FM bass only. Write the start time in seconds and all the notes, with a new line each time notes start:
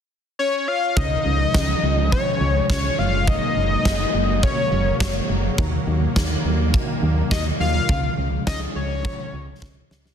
0.97 C#2
1.26 C#2
1.55 C#2
1.83 C#2
2.41 C#2
2.70 C#2
2.99 F#1
3.56 F#1
3.85 F#1
4.14 F#1
4.72 F#1
5.00 F#1
5.29 F#1
5.58 D#2
5.87 D#2
6.16 D#2
6.45 D#2
7.03 D#2
7.31 D#2
7.60 D#2
7.89 C#2
8.18 C#2
8.47 C#2
8.76 C#2
9.33 C#2
9.62 C#2
9.91 C#2